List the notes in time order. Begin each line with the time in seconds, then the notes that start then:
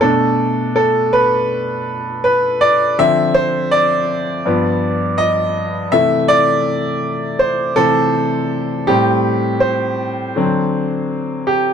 0.01 B2 A3 D4 A4
0.76 A4
1.13 B4
2.24 B4
2.61 D5
2.99 D3 F3 C4 E5
3.34 C5
3.71 D5
4.45 G2 F3 B3
5.18 D#5
5.92 C3 E3 A3 E5
6.28 D5
7.39 C5
7.76 C3 E3 A3 A4
8.87 A2 G3 C4 G4
9.60 C5
10.36 D3 F#3 C4
11.47 G4